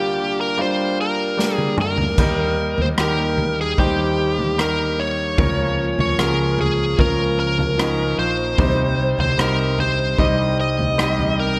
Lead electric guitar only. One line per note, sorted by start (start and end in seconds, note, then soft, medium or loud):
0.00 0.40 G4 medium
0.41 0.60 A#4 medium
0.61 0.97 C5 medium
1.01 1.55 A#4 medium
1.55 1.76 G#4 medium
1.81 2.83 A#4 soft
2.82 2.87 C5 medium
3.01 3.61 A#4 medium
3.61 3.79 G#4 medium
3.79 4.61 G4 medium
4.62 5.01 A#4 medium
5.00 5.99 C#5 medium
6.00 6.20 C#5 medium
6.20 6.60 A#4 medium
6.61 7.00 G#4 medium
7.01 7.39 A#4 medium
7.40 8.19 A#4 medium
8.19 9.19 C5 medium
9.20 9.40 C5 medium
9.41 9.80 A#4 medium
9.80 10.17 C5 medium
10.20 10.56 D#5 medium
10.61 11.42 D#5 medium
11.40 11.60 A#4 medium